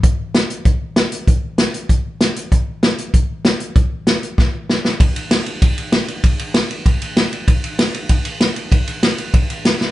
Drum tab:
RD |--------|--------|--------|--------|
HH |x-xxx-xx|x-xxx-xx|x-xxx-xx|x-xx----|
SD |--o---o-|--o---o-|--o---o-|--o-o-oo|
BD |o---o---|o---o---|o---o---|o---o---|

RD |xxxxxxxx|xxxxxxxx|xxxxxxxx|xxxxxxx-|
HH |--------|--------|--------|--------|
SD |--o---o-|--o---o-|--o---o-|--o---oo|
BD |o---o---|o---o---|o---o---|o---o---|